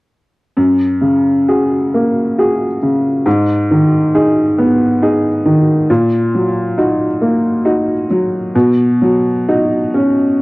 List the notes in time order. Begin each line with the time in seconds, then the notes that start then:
0.57 F#2
1.01 C#3
1.48 F#4 G#4
1.94 A#3
2.39 F#4 G#4
2.83 C#3
3.26 G#2
3.71 D#3
4.15 D#4 G#4
4.58 B3
5.02 D#4 G#4
5.45 D#3
5.90 A#2
6.35 F#3
6.78 D#4 F#4
7.21 A#3
7.65 D#4 F#4
8.10 F#3
8.55 B2
9.01 F#3
9.48 D#4 F#4
9.94 C#4